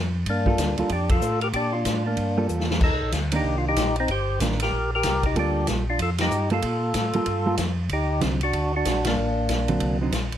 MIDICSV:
0, 0, Header, 1, 5, 480
1, 0, Start_track
1, 0, Key_signature, -2, "minor"
1, 0, Tempo, 318134
1, 400, Time_signature, 4, 2, 24, 8
1, 15655, End_track
2, 0, Start_track
2, 0, Title_t, "Tonewheel organ"
2, 0, Program_c, 0, 16
2, 444, Note_on_c, 0, 62, 69
2, 455, Note_on_c, 0, 58, 60
2, 1150, Note_off_c, 0, 58, 0
2, 1193, Note_on_c, 0, 65, 77
2, 1205, Note_off_c, 0, 62, 0
2, 1223, Note_on_c, 0, 62, 61
2, 1374, Note_off_c, 0, 62, 0
2, 1375, Note_off_c, 0, 65, 0
2, 1389, Note_on_c, 0, 67, 83
2, 1398, Note_on_c, 0, 62, 61
2, 1650, Note_off_c, 0, 67, 0
2, 1655, Note_off_c, 0, 62, 0
2, 1665, Note_on_c, 0, 69, 84
2, 1686, Note_on_c, 0, 65, 79
2, 2107, Note_off_c, 0, 69, 0
2, 2119, Note_off_c, 0, 65, 0
2, 2147, Note_on_c, 0, 70, 91
2, 2168, Note_on_c, 0, 67, 72
2, 2228, Note_off_c, 0, 70, 0
2, 2244, Note_off_c, 0, 67, 0
2, 2325, Note_on_c, 0, 67, 92
2, 2356, Note_on_c, 0, 62, 69
2, 2601, Note_on_c, 0, 65, 91
2, 2614, Note_off_c, 0, 62, 0
2, 2626, Note_off_c, 0, 67, 0
2, 2634, Note_on_c, 0, 62, 67
2, 3072, Note_off_c, 0, 62, 0
2, 3103, Note_off_c, 0, 65, 0
2, 3112, Note_on_c, 0, 62, 70
2, 3128, Note_on_c, 0, 58, 57
2, 3724, Note_off_c, 0, 62, 0
2, 3732, Note_off_c, 0, 58, 0
2, 4279, Note_on_c, 0, 69, 80
2, 4280, Note_on_c, 0, 63, 63
2, 4708, Note_off_c, 0, 63, 0
2, 4708, Note_off_c, 0, 69, 0
2, 5060, Note_on_c, 0, 63, 64
2, 5068, Note_on_c, 0, 67, 80
2, 5365, Note_off_c, 0, 63, 0
2, 5400, Note_on_c, 0, 65, 68
2, 5402, Note_off_c, 0, 67, 0
2, 5513, Note_off_c, 0, 65, 0
2, 5560, Note_on_c, 0, 67, 103
2, 5561, Note_on_c, 0, 63, 65
2, 5977, Note_off_c, 0, 63, 0
2, 5977, Note_off_c, 0, 67, 0
2, 6034, Note_on_c, 0, 63, 85
2, 6035, Note_on_c, 0, 60, 66
2, 6180, Note_off_c, 0, 60, 0
2, 6195, Note_off_c, 0, 63, 0
2, 6202, Note_on_c, 0, 67, 69
2, 6209, Note_on_c, 0, 72, 98
2, 6629, Note_off_c, 0, 67, 0
2, 6633, Note_off_c, 0, 72, 0
2, 6978, Note_on_c, 0, 70, 91
2, 6980, Note_on_c, 0, 67, 67
2, 7405, Note_off_c, 0, 70, 0
2, 7406, Note_off_c, 0, 67, 0
2, 7471, Note_on_c, 0, 70, 108
2, 7480, Note_on_c, 0, 67, 69
2, 7896, Note_off_c, 0, 67, 0
2, 7934, Note_on_c, 0, 67, 80
2, 7936, Note_off_c, 0, 70, 0
2, 7940, Note_on_c, 0, 63, 67
2, 8088, Note_off_c, 0, 67, 0
2, 8092, Note_off_c, 0, 63, 0
2, 8134, Note_on_c, 0, 67, 90
2, 8144, Note_on_c, 0, 62, 68
2, 8555, Note_off_c, 0, 67, 0
2, 8560, Note_off_c, 0, 62, 0
2, 8896, Note_on_c, 0, 65, 69
2, 8901, Note_on_c, 0, 62, 60
2, 9052, Note_off_c, 0, 62, 0
2, 9065, Note_off_c, 0, 65, 0
2, 9084, Note_on_c, 0, 69, 84
2, 9091, Note_on_c, 0, 65, 64
2, 9206, Note_off_c, 0, 69, 0
2, 9212, Note_off_c, 0, 65, 0
2, 9370, Note_on_c, 0, 67, 82
2, 9378, Note_on_c, 0, 63, 67
2, 9799, Note_off_c, 0, 67, 0
2, 9804, Note_off_c, 0, 63, 0
2, 9850, Note_on_c, 0, 69, 75
2, 9865, Note_on_c, 0, 65, 60
2, 11396, Note_off_c, 0, 69, 0
2, 11403, Note_off_c, 0, 65, 0
2, 11963, Note_on_c, 0, 67, 90
2, 11967, Note_on_c, 0, 63, 72
2, 12388, Note_off_c, 0, 67, 0
2, 12390, Note_off_c, 0, 63, 0
2, 12722, Note_on_c, 0, 66, 87
2, 12736, Note_on_c, 0, 62, 70
2, 13162, Note_off_c, 0, 62, 0
2, 13201, Note_off_c, 0, 66, 0
2, 13223, Note_on_c, 0, 66, 98
2, 13226, Note_on_c, 0, 62, 71
2, 13647, Note_off_c, 0, 62, 0
2, 13691, Note_off_c, 0, 66, 0
2, 13692, Note_on_c, 0, 58, 61
2, 13694, Note_on_c, 0, 62, 74
2, 15052, Note_off_c, 0, 58, 0
2, 15052, Note_off_c, 0, 62, 0
2, 15655, End_track
3, 0, Start_track
3, 0, Title_t, "Hollow-body jazz guitar"
3, 0, Program_c, 1, 26
3, 703, Note_on_c, 1, 55, 59
3, 710, Note_on_c, 1, 58, 55
3, 714, Note_on_c, 1, 65, 70
3, 720, Note_on_c, 1, 69, 64
3, 1150, Note_off_c, 1, 55, 0
3, 1153, Note_off_c, 1, 58, 0
3, 1155, Note_off_c, 1, 65, 0
3, 1158, Note_off_c, 1, 69, 0
3, 1185, Note_on_c, 1, 55, 60
3, 1193, Note_on_c, 1, 58, 61
3, 1197, Note_on_c, 1, 65, 65
3, 1203, Note_on_c, 1, 69, 74
3, 1347, Note_off_c, 1, 55, 0
3, 1351, Note_off_c, 1, 58, 0
3, 1353, Note_off_c, 1, 65, 0
3, 1356, Note_off_c, 1, 69, 0
3, 3582, Note_on_c, 1, 55, 53
3, 3588, Note_on_c, 1, 65, 61
3, 3590, Note_on_c, 1, 58, 52
3, 3596, Note_on_c, 1, 69, 64
3, 4208, Note_off_c, 1, 55, 0
3, 4211, Note_off_c, 1, 65, 0
3, 4212, Note_off_c, 1, 58, 0
3, 4215, Note_off_c, 1, 69, 0
3, 5015, Note_on_c, 1, 51, 60
3, 5026, Note_on_c, 1, 58, 60
3, 5036, Note_on_c, 1, 62, 66
3, 5644, Note_off_c, 1, 51, 0
3, 5650, Note_off_c, 1, 58, 0
3, 5655, Note_off_c, 1, 62, 0
3, 6658, Note_on_c, 1, 51, 57
3, 6666, Note_on_c, 1, 58, 59
3, 6673, Note_on_c, 1, 62, 55
3, 6914, Note_off_c, 1, 51, 0
3, 6919, Note_off_c, 1, 58, 0
3, 6922, Note_off_c, 1, 62, 0
3, 8089, Note_on_c, 1, 55, 60
3, 8094, Note_on_c, 1, 58, 54
3, 8102, Note_on_c, 1, 65, 58
3, 8103, Note_on_c, 1, 69, 55
3, 8800, Note_off_c, 1, 55, 0
3, 8802, Note_off_c, 1, 58, 0
3, 8806, Note_off_c, 1, 65, 0
3, 8807, Note_off_c, 1, 69, 0
3, 9826, Note_on_c, 1, 55, 61
3, 9829, Note_on_c, 1, 58, 66
3, 9836, Note_on_c, 1, 65, 67
3, 9841, Note_on_c, 1, 69, 71
3, 9987, Note_off_c, 1, 55, 0
3, 9988, Note_off_c, 1, 58, 0
3, 9992, Note_off_c, 1, 65, 0
3, 9994, Note_off_c, 1, 69, 0
3, 10783, Note_on_c, 1, 55, 60
3, 10791, Note_on_c, 1, 58, 65
3, 10795, Note_on_c, 1, 65, 66
3, 10804, Note_on_c, 1, 69, 68
3, 10945, Note_off_c, 1, 55, 0
3, 10949, Note_off_c, 1, 58, 0
3, 10951, Note_off_c, 1, 65, 0
3, 10955, Note_off_c, 1, 69, 0
3, 11255, Note_on_c, 1, 55, 52
3, 11265, Note_on_c, 1, 58, 59
3, 11270, Note_on_c, 1, 65, 69
3, 11275, Note_on_c, 1, 69, 67
3, 11421, Note_off_c, 1, 55, 0
3, 11426, Note_off_c, 1, 58, 0
3, 11428, Note_off_c, 1, 65, 0
3, 11431, Note_off_c, 1, 69, 0
3, 12388, Note_on_c, 1, 50, 55
3, 12390, Note_on_c, 1, 54, 51
3, 12402, Note_on_c, 1, 60, 62
3, 12405, Note_on_c, 1, 63, 60
3, 12657, Note_off_c, 1, 50, 0
3, 12659, Note_off_c, 1, 54, 0
3, 12665, Note_off_c, 1, 60, 0
3, 12666, Note_off_c, 1, 63, 0
3, 14620, Note_on_c, 1, 50, 56
3, 14623, Note_on_c, 1, 60, 62
3, 14624, Note_on_c, 1, 54, 64
3, 15066, Note_off_c, 1, 50, 0
3, 15068, Note_off_c, 1, 54, 0
3, 15068, Note_off_c, 1, 60, 0
3, 15105, Note_on_c, 1, 50, 60
3, 15116, Note_on_c, 1, 54, 63
3, 15117, Note_on_c, 1, 60, 64
3, 15124, Note_on_c, 1, 63, 72
3, 15265, Note_off_c, 1, 50, 0
3, 15271, Note_off_c, 1, 54, 0
3, 15272, Note_off_c, 1, 60, 0
3, 15275, Note_off_c, 1, 63, 0
3, 15655, End_track
4, 0, Start_track
4, 0, Title_t, "Tonewheel organ"
4, 0, Program_c, 2, 16
4, 0, Note_on_c, 2, 41, 74
4, 385, Note_off_c, 2, 41, 0
4, 397, Note_on_c, 2, 43, 78
4, 865, Note_off_c, 2, 43, 0
4, 879, Note_on_c, 2, 38, 90
4, 1151, Note_off_c, 2, 38, 0
4, 1169, Note_on_c, 2, 38, 39
4, 1263, Note_off_c, 2, 38, 0
4, 1358, Note_on_c, 2, 41, 76
4, 1825, Note_off_c, 2, 41, 0
4, 1835, Note_on_c, 2, 45, 72
4, 2304, Note_off_c, 2, 45, 0
4, 2322, Note_on_c, 2, 46, 73
4, 2788, Note_off_c, 2, 46, 0
4, 2795, Note_on_c, 2, 45, 82
4, 3264, Note_off_c, 2, 45, 0
4, 3280, Note_on_c, 2, 43, 71
4, 3746, Note_off_c, 2, 43, 0
4, 3763, Note_on_c, 2, 40, 76
4, 4228, Note_off_c, 2, 40, 0
4, 4237, Note_on_c, 2, 39, 81
4, 4395, Note_off_c, 2, 39, 0
4, 4399, Note_on_c, 2, 36, 54
4, 4551, Note_on_c, 2, 34, 54
4, 4560, Note_off_c, 2, 36, 0
4, 4705, Note_off_c, 2, 34, 0
4, 4715, Note_on_c, 2, 38, 83
4, 5184, Note_off_c, 2, 38, 0
4, 5199, Note_on_c, 2, 36, 76
4, 5666, Note_off_c, 2, 36, 0
4, 5679, Note_on_c, 2, 34, 78
4, 6146, Note_off_c, 2, 34, 0
4, 6162, Note_on_c, 2, 31, 79
4, 6627, Note_off_c, 2, 31, 0
4, 6641, Note_on_c, 2, 33, 91
4, 7106, Note_off_c, 2, 33, 0
4, 7119, Note_on_c, 2, 34, 66
4, 7585, Note_off_c, 2, 34, 0
4, 7602, Note_on_c, 2, 36, 74
4, 8066, Note_off_c, 2, 36, 0
4, 8083, Note_on_c, 2, 38, 77
4, 8547, Note_off_c, 2, 38, 0
4, 8562, Note_on_c, 2, 34, 91
4, 9026, Note_off_c, 2, 34, 0
4, 9039, Note_on_c, 2, 41, 72
4, 9505, Note_off_c, 2, 41, 0
4, 9523, Note_on_c, 2, 43, 78
4, 9986, Note_off_c, 2, 43, 0
4, 9995, Note_on_c, 2, 46, 82
4, 10462, Note_off_c, 2, 46, 0
4, 10482, Note_on_c, 2, 45, 86
4, 10754, Note_off_c, 2, 45, 0
4, 10777, Note_on_c, 2, 45, 39
4, 10869, Note_off_c, 2, 45, 0
4, 10962, Note_on_c, 2, 43, 73
4, 11425, Note_off_c, 2, 43, 0
4, 11439, Note_on_c, 2, 41, 74
4, 11904, Note_off_c, 2, 41, 0
4, 11916, Note_on_c, 2, 38, 81
4, 12382, Note_off_c, 2, 38, 0
4, 12397, Note_on_c, 2, 36, 87
4, 12863, Note_off_c, 2, 36, 0
4, 12876, Note_on_c, 2, 38, 69
4, 13342, Note_off_c, 2, 38, 0
4, 13357, Note_on_c, 2, 34, 76
4, 13823, Note_off_c, 2, 34, 0
4, 13844, Note_on_c, 2, 33, 80
4, 14306, Note_off_c, 2, 33, 0
4, 14320, Note_on_c, 2, 34, 89
4, 14784, Note_off_c, 2, 34, 0
4, 14798, Note_on_c, 2, 36, 76
4, 15264, Note_off_c, 2, 36, 0
4, 15283, Note_on_c, 2, 34, 73
4, 15548, Note_off_c, 2, 34, 0
4, 15566, Note_on_c, 2, 34, 38
4, 15655, Note_off_c, 2, 34, 0
4, 15655, End_track
5, 0, Start_track
5, 0, Title_t, "Drums"
5, 394, Note_on_c, 9, 51, 55
5, 400, Note_on_c, 9, 36, 20
5, 545, Note_off_c, 9, 51, 0
5, 551, Note_off_c, 9, 36, 0
5, 694, Note_on_c, 9, 36, 55
5, 845, Note_off_c, 9, 36, 0
5, 878, Note_on_c, 9, 44, 46
5, 878, Note_on_c, 9, 51, 61
5, 881, Note_on_c, 9, 36, 24
5, 885, Note_on_c, 9, 38, 62
5, 1028, Note_off_c, 9, 44, 0
5, 1028, Note_off_c, 9, 51, 0
5, 1032, Note_off_c, 9, 36, 0
5, 1036, Note_off_c, 9, 38, 0
5, 1171, Note_on_c, 9, 51, 45
5, 1322, Note_off_c, 9, 51, 0
5, 1350, Note_on_c, 9, 51, 54
5, 1358, Note_on_c, 9, 36, 23
5, 1500, Note_off_c, 9, 51, 0
5, 1509, Note_off_c, 9, 36, 0
5, 1651, Note_on_c, 9, 51, 66
5, 1655, Note_on_c, 9, 36, 73
5, 1802, Note_off_c, 9, 51, 0
5, 1806, Note_off_c, 9, 36, 0
5, 1834, Note_on_c, 9, 44, 59
5, 1985, Note_off_c, 9, 44, 0
5, 2131, Note_on_c, 9, 51, 43
5, 2281, Note_off_c, 9, 51, 0
5, 2315, Note_on_c, 9, 51, 56
5, 2320, Note_on_c, 9, 36, 20
5, 2466, Note_off_c, 9, 51, 0
5, 2471, Note_off_c, 9, 36, 0
5, 2793, Note_on_c, 9, 44, 45
5, 2793, Note_on_c, 9, 51, 58
5, 2798, Note_on_c, 9, 36, 24
5, 2800, Note_on_c, 9, 38, 58
5, 2944, Note_off_c, 9, 44, 0
5, 2944, Note_off_c, 9, 51, 0
5, 2949, Note_off_c, 9, 36, 0
5, 2951, Note_off_c, 9, 38, 0
5, 3271, Note_on_c, 9, 51, 51
5, 3279, Note_on_c, 9, 36, 16
5, 3422, Note_off_c, 9, 51, 0
5, 3430, Note_off_c, 9, 36, 0
5, 3753, Note_on_c, 9, 44, 52
5, 3904, Note_off_c, 9, 44, 0
5, 3923, Note_on_c, 9, 38, 52
5, 4073, Note_off_c, 9, 38, 0
5, 4079, Note_on_c, 9, 38, 65
5, 4230, Note_off_c, 9, 38, 0
5, 4236, Note_on_c, 9, 49, 68
5, 4238, Note_on_c, 9, 36, 67
5, 4387, Note_off_c, 9, 49, 0
5, 4389, Note_off_c, 9, 36, 0
5, 4712, Note_on_c, 9, 44, 50
5, 4712, Note_on_c, 9, 51, 61
5, 4718, Note_on_c, 9, 36, 19
5, 4720, Note_on_c, 9, 38, 55
5, 4863, Note_off_c, 9, 44, 0
5, 4863, Note_off_c, 9, 51, 0
5, 4869, Note_off_c, 9, 36, 0
5, 4871, Note_off_c, 9, 38, 0
5, 5003, Note_on_c, 9, 51, 66
5, 5154, Note_off_c, 9, 51, 0
5, 5199, Note_on_c, 9, 36, 17
5, 5350, Note_off_c, 9, 36, 0
5, 5680, Note_on_c, 9, 44, 57
5, 5680, Note_on_c, 9, 51, 61
5, 5681, Note_on_c, 9, 36, 19
5, 5687, Note_on_c, 9, 38, 70
5, 5831, Note_off_c, 9, 44, 0
5, 5831, Note_off_c, 9, 51, 0
5, 5832, Note_off_c, 9, 36, 0
5, 5838, Note_off_c, 9, 38, 0
5, 5971, Note_on_c, 9, 51, 41
5, 6122, Note_off_c, 9, 51, 0
5, 6157, Note_on_c, 9, 51, 55
5, 6163, Note_on_c, 9, 36, 18
5, 6308, Note_off_c, 9, 51, 0
5, 6313, Note_off_c, 9, 36, 0
5, 6642, Note_on_c, 9, 44, 55
5, 6642, Note_on_c, 9, 51, 57
5, 6643, Note_on_c, 9, 36, 21
5, 6650, Note_on_c, 9, 38, 62
5, 6793, Note_off_c, 9, 44, 0
5, 6793, Note_off_c, 9, 51, 0
5, 6794, Note_off_c, 9, 36, 0
5, 6801, Note_off_c, 9, 38, 0
5, 6810, Note_on_c, 9, 38, 26
5, 6935, Note_on_c, 9, 51, 64
5, 6961, Note_off_c, 9, 38, 0
5, 6970, Note_on_c, 9, 38, 43
5, 7086, Note_off_c, 9, 51, 0
5, 7121, Note_off_c, 9, 38, 0
5, 7122, Note_on_c, 9, 36, 20
5, 7273, Note_off_c, 9, 36, 0
5, 7593, Note_on_c, 9, 44, 53
5, 7593, Note_on_c, 9, 51, 69
5, 7601, Note_on_c, 9, 36, 24
5, 7601, Note_on_c, 9, 38, 66
5, 7744, Note_off_c, 9, 44, 0
5, 7744, Note_off_c, 9, 51, 0
5, 7752, Note_off_c, 9, 36, 0
5, 7752, Note_off_c, 9, 38, 0
5, 7895, Note_on_c, 9, 51, 40
5, 7897, Note_on_c, 9, 36, 50
5, 8046, Note_off_c, 9, 51, 0
5, 8048, Note_off_c, 9, 36, 0
5, 8084, Note_on_c, 9, 36, 19
5, 8086, Note_on_c, 9, 51, 50
5, 8235, Note_off_c, 9, 36, 0
5, 8237, Note_off_c, 9, 51, 0
5, 8555, Note_on_c, 9, 44, 52
5, 8555, Note_on_c, 9, 51, 55
5, 8562, Note_on_c, 9, 36, 18
5, 8563, Note_on_c, 9, 38, 59
5, 8706, Note_off_c, 9, 44, 0
5, 8706, Note_off_c, 9, 51, 0
5, 8713, Note_off_c, 9, 36, 0
5, 8714, Note_off_c, 9, 38, 0
5, 9039, Note_on_c, 9, 51, 61
5, 9042, Note_on_c, 9, 36, 22
5, 9190, Note_off_c, 9, 51, 0
5, 9193, Note_off_c, 9, 36, 0
5, 9330, Note_on_c, 9, 51, 67
5, 9338, Note_on_c, 9, 38, 71
5, 9481, Note_off_c, 9, 51, 0
5, 9489, Note_off_c, 9, 38, 0
5, 9516, Note_on_c, 9, 44, 49
5, 9667, Note_off_c, 9, 44, 0
5, 9807, Note_on_c, 9, 51, 39
5, 9957, Note_off_c, 9, 51, 0
5, 9993, Note_on_c, 9, 51, 61
5, 10000, Note_on_c, 9, 36, 21
5, 10144, Note_off_c, 9, 51, 0
5, 10151, Note_off_c, 9, 36, 0
5, 10469, Note_on_c, 9, 44, 53
5, 10469, Note_on_c, 9, 51, 63
5, 10477, Note_on_c, 9, 38, 57
5, 10478, Note_on_c, 9, 36, 20
5, 10620, Note_off_c, 9, 44, 0
5, 10620, Note_off_c, 9, 51, 0
5, 10628, Note_off_c, 9, 38, 0
5, 10629, Note_off_c, 9, 36, 0
5, 10763, Note_on_c, 9, 51, 48
5, 10914, Note_off_c, 9, 51, 0
5, 10951, Note_on_c, 9, 51, 53
5, 10959, Note_on_c, 9, 36, 16
5, 11101, Note_off_c, 9, 51, 0
5, 11110, Note_off_c, 9, 36, 0
5, 11429, Note_on_c, 9, 44, 52
5, 11429, Note_on_c, 9, 51, 62
5, 11436, Note_on_c, 9, 38, 63
5, 11438, Note_on_c, 9, 36, 18
5, 11580, Note_off_c, 9, 44, 0
5, 11580, Note_off_c, 9, 51, 0
5, 11587, Note_off_c, 9, 38, 0
5, 11589, Note_off_c, 9, 36, 0
5, 11910, Note_on_c, 9, 51, 55
5, 11918, Note_on_c, 9, 36, 19
5, 12061, Note_off_c, 9, 51, 0
5, 12069, Note_off_c, 9, 36, 0
5, 12392, Note_on_c, 9, 44, 48
5, 12392, Note_on_c, 9, 51, 55
5, 12397, Note_on_c, 9, 36, 16
5, 12399, Note_on_c, 9, 38, 54
5, 12543, Note_off_c, 9, 44, 0
5, 12543, Note_off_c, 9, 51, 0
5, 12548, Note_off_c, 9, 36, 0
5, 12550, Note_off_c, 9, 38, 0
5, 12686, Note_on_c, 9, 51, 49
5, 12837, Note_off_c, 9, 51, 0
5, 12875, Note_on_c, 9, 51, 53
5, 12879, Note_on_c, 9, 36, 20
5, 13026, Note_off_c, 9, 51, 0
5, 13030, Note_off_c, 9, 36, 0
5, 13358, Note_on_c, 9, 44, 52
5, 13358, Note_on_c, 9, 51, 62
5, 13361, Note_on_c, 9, 36, 21
5, 13365, Note_on_c, 9, 38, 61
5, 13508, Note_off_c, 9, 44, 0
5, 13508, Note_off_c, 9, 51, 0
5, 13512, Note_off_c, 9, 36, 0
5, 13516, Note_off_c, 9, 38, 0
5, 13648, Note_on_c, 9, 51, 62
5, 13656, Note_on_c, 9, 38, 73
5, 13799, Note_off_c, 9, 51, 0
5, 13807, Note_off_c, 9, 38, 0
5, 14315, Note_on_c, 9, 44, 49
5, 14315, Note_on_c, 9, 51, 61
5, 14321, Note_on_c, 9, 36, 19
5, 14323, Note_on_c, 9, 38, 61
5, 14466, Note_off_c, 9, 44, 0
5, 14466, Note_off_c, 9, 51, 0
5, 14472, Note_off_c, 9, 36, 0
5, 14474, Note_off_c, 9, 38, 0
5, 14608, Note_on_c, 9, 51, 48
5, 14759, Note_off_c, 9, 51, 0
5, 14790, Note_on_c, 9, 51, 58
5, 14799, Note_on_c, 9, 36, 20
5, 14941, Note_off_c, 9, 51, 0
5, 14950, Note_off_c, 9, 36, 0
5, 15275, Note_on_c, 9, 44, 55
5, 15275, Note_on_c, 9, 51, 65
5, 15281, Note_on_c, 9, 36, 19
5, 15283, Note_on_c, 9, 38, 61
5, 15426, Note_off_c, 9, 44, 0
5, 15426, Note_off_c, 9, 51, 0
5, 15432, Note_off_c, 9, 36, 0
5, 15434, Note_off_c, 9, 38, 0
5, 15574, Note_on_c, 9, 51, 39
5, 15655, Note_off_c, 9, 51, 0
5, 15655, End_track
0, 0, End_of_file